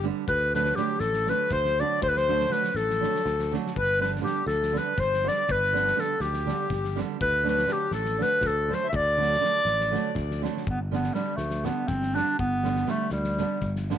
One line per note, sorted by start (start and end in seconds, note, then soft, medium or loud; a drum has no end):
0.04 0.24 D3 medium
0.04 0.23 G3 medium
0.04 0.24 B3 medium
0.04 0.24 D4 medium
0.28 0.71 D2 loud
0.28 0.52 B4 medium
0.28 0.52 B4 loud
0.28 kick medium
0.53 0.73 D3 medium
0.53 0.73 F#3 medium
0.53 0.73 A3 medium
0.53 0.74 D4 medium
0.53 0.75 B4 medium
0.53 0.77 B4 medium
0.53 snare soft
0.65 snare soft
0.75 0.96 D3 medium
0.75 0.96 F#3 medium
0.75 0.96 A3 medium
0.75 0.96 D4 medium
0.75 1.01 G4 medium
0.75 0.99 G4 medium
0.75 snare soft
1.00 1.31 A1 medium
1.00 1.30 A4 medium
1.00 1.28 A4 medium
1.00 snare soft
1.13 snare soft
1.27 1.46 D3 medium
1.27 1.47 F#3 medium
1.27 1.47 A3 medium
1.27 1.48 D4 medium
1.27 1.51 B4 medium
1.27 1.54 B4 medium
1.27 snare soft
1.50 1.82 D2 medium
1.50 1.82 C5 loud
1.50 1.79 C5 medium
1.50 kick medium
1.50 snare soft
1.65 snare soft
1.80 1.98 D3 medium
1.80 1.99 F#3 medium
1.80 1.99 A3 medium
1.80 1.99 D4 medium
1.80 2.02 D5 loud
1.80 2.03 D5 medium
2.02 2.44 D2 loud
2.02 2.10 C5 loud
2.02 2.10 C5 medium
2.02 kick loud
2.08 2.18 B4 medium
2.08 2.17 B4 medium
2.17 2.53 C5 loud
2.17 2.51 C5 medium
2.17 snare soft
2.28 2.46 D3 medium
2.28 2.46 F#3 medium
2.28 2.47 A3 medium
2.28 2.47 D4 medium
2.28 snare soft
2.40 snare soft
2.49 2.68 D3 medium
2.49 2.68 F#3 medium
2.49 2.69 A3 medium
2.49 2.69 D4 medium
2.49 2.77 B4 medium
2.49 2.73 B4 medium
2.49 snare soft
2.64 snare soft
2.74 3.04 A1 medium
2.74 3.53 A4 medium
2.74 3.54 A4 medium
2.74 snare soft
2.90 snare soft
3.00 3.19 D3 medium
3.00 3.20 F#3 medium
3.00 3.20 A3 medium
3.00 3.21 D4 medium
3.00 snare soft
3.15 snare soft
3.25 3.56 D2 medium
3.25 snare soft
3.39 snare soft
3.52 3.71 D3 medium
3.52 3.71 F#3 medium
3.52 3.71 A3 medium
3.52 3.72 D4 medium
3.52 snare soft
3.67 snare soft
3.76 4.19 G1 medium
3.76 4.00 B4 medium
3.76 4.00 B4 loud
3.76 kick loud
3.99 4.19 D3 medium
3.99 4.19 G3 medium
3.99 4.19 B3 medium
3.99 4.20 D4 medium
3.99 4.11 B4 medium
3.99 4.12 B4 medium
4.04 snare soft
4.16 snare soft
4.20 4.40 D3 medium
4.20 4.41 G3 medium
4.20 4.41 B3 medium
4.20 4.41 D4 medium
4.24 4.44 G4 medium
4.24 4.45 G4 medium
4.24 snare soft
4.46 4.77 D2 medium
4.46 4.79 A4 medium
4.46 4.73 A4 medium
4.46 snare soft
4.63 snare soft
4.72 4.92 D3 medium
4.72 4.93 G3 medium
4.72 4.92 B3 soft
4.72 4.93 D4 medium
4.72 snare soft
4.76 4.98 B4 medium
4.76 5.01 B4 medium
4.98 5.28 G1 medium
4.98 5.30 C5 loud
4.98 5.27 C5 medium
4.98 kick medium
4.98 snare soft
5.14 snare soft
5.23 5.43 D3 medium
5.23 5.43 G3 medium
5.23 5.43 B3 medium
5.23 5.44 D4 medium
5.28 5.49 D5 medium
5.28 5.53 D5 loud
5.28 snare soft
5.49 5.91 G1 medium
5.49 5.97 B4 medium
5.49 6.01 B4 loud
5.49 kick loud
5.73 5.92 D3 medium
5.73 5.92 G3 medium
5.73 5.92 B3 medium
5.73 5.92 D4 medium
5.73 snare soft
5.88 snare soft
5.95 6.14 D3 medium
5.95 6.14 G3 medium
5.95 6.15 B3 medium
5.95 6.15 D4 medium
5.95 snare soft
6.00 6.20 A4 medium
6.00 6.23 A4 medium
6.20 6.50 D2 medium
6.20 6.99 G4 medium
6.20 snare soft
6.34 snare soft
6.46 6.65 D3 medium
6.46 6.65 G3 medium
6.46 6.65 B3 medium
6.46 6.66 D4 medium
6.46 snare soft
6.70 7.01 G1 loud
6.70 kick medium
6.70 snare soft
6.84 snare soft
6.96 7.16 D3 medium
6.96 7.16 G3 medium
6.96 7.16 B3 medium
6.96 7.17 D4 medium
6.96 snare soft
7.21 7.63 D2 medium
7.21 7.45 B4 loud
7.21 7.45 B4 medium
7.21 kick loud
7.43 7.63 D3 medium
7.43 7.63 F#3 medium
7.43 7.64 A3 medium
7.43 7.64 D4 medium
7.43 7.67 B4 medium
7.48 7.74 B4 medium
7.48 snare soft
7.59 snare soft
7.66 7.86 D3 medium
7.66 7.86 F#3 medium
7.66 7.86 A3 medium
7.66 7.87 D4 medium
7.66 7.91 G4 medium
7.66 snare soft
7.72 7.93 G4 medium
7.91 8.22 A1 medium
7.91 8.17 A4 medium
7.91 8.24 A4 medium
7.91 snare soft
8.05 snare soft
8.18 8.37 D3 medium
8.18 8.38 F#3 medium
8.18 8.38 A3 medium
8.18 8.38 D4 medium
8.18 8.43 B4 medium
8.18 snare soft
8.22 8.48 B4 loud
8.41 8.72 D2 medium
8.41 8.71 A4 medium
8.41 kick medium
8.41 snare soft
8.47 8.76 A4 medium
8.68 8.88 D3 medium
8.68 8.89 F#3 medium
8.68 8.89 A3 medium
8.68 8.89 D4 medium
8.68 8.87 C5 medium
8.72 8.89 C5 loud
8.72 snare soft
8.84 8.91 E5 medium
8.89 9.35 D2 loud
8.89 10.42 D5 medium
8.89 8.97 E5 medium
8.94 10.44 D5 loud
8.94 kick medium
9.17 9.36 D3 medium
9.17 9.37 F#3 medium
9.17 9.37 A3 medium
9.17 9.37 D4 medium
9.22 snare soft
9.34 snare soft
9.40 9.59 D3 medium
9.40 9.60 F#3 medium
9.40 9.59 A3 medium
9.40 9.60 D4 medium
9.44 snare soft
9.65 9.95 A1 medium
9.65 snare soft
9.80 snare soft
9.91 10.10 D3 medium
9.91 10.11 F#3 medium
9.91 10.11 A3 medium
9.91 10.12 D4 medium
9.91 snare soft
10.15 10.46 D2 medium
10.15 kick medium
10.15 snare soft
10.31 snare soft
10.42 10.62 D3 medium
10.42 10.62 F#3 medium
10.42 10.62 A3 medium
10.42 10.62 D4 medium
10.42 snare soft
10.57 snare soft
10.67 11.09 G1 medium
10.67 10.79 B3 loud
10.67 kick loud
10.91 11.10 D3 medium
10.91 11.11 G3 medium
10.91 11.11 B3 medium
10.91 11.16 B3 medium
10.91 11.11 D4 medium
10.91 snare soft
11.04 snare soft
11.14 11.33 D3 medium
11.14 11.38 G3 medium
11.14 11.33 G3 medium
11.14 11.33 B3 medium
11.14 11.34 D4 medium
11.14 snare soft
11.36 11.68 D2 medium
11.36 11.67 A3 medium
11.36 snare soft
11.50 snare soft
11.63 11.83 D3 medium
11.63 11.84 G3 medium
11.63 11.84 B3 medium
11.63 11.89 B3 medium
11.63 11.84 D4 medium
11.63 snare soft
11.88 12.20 G1 medium
11.88 12.16 C4 loud
11.88 kick medium
11.88 snare soft
12.02 snare soft
12.14 12.35 D3 medium
12.14 12.35 G3 medium
12.14 12.35 B3 medium
12.14 12.38 D4 loud
12.14 12.35 D4 medium
12.14 snare soft
12.39 12.83 G1 medium
12.39 12.92 B3 loud
12.39 kick medium
12.63 12.83 D3 medium
12.63 12.83 G3 medium
12.63 12.84 B3 medium
12.63 12.84 D4 medium
12.63 snare soft
12.76 snare soft
12.87 13.06 D3 medium
12.87 13.07 G3 medium
12.87 13.11 A3 loud
12.87 13.06 B3 medium
12.87 13.07 D4 medium
12.87 snare soft
13.10 13.42 D2 medium
13.10 13.87 G3 medium
13.10 snare soft
13.24 snare soft
13.38 13.58 D3 medium
13.38 13.58 G3 medium
13.38 13.59 B3 medium
13.38 13.59 D4 medium
13.38 snare soft
13.60 13.93 G1 medium
13.60 kick medium
13.60 snare soft
13.76 snare soft
13.90 13.98 D3 medium
13.90 13.98 G3 medium
13.90 13.98 B3 medium
13.90 13.98 D4 medium
13.90 snare soft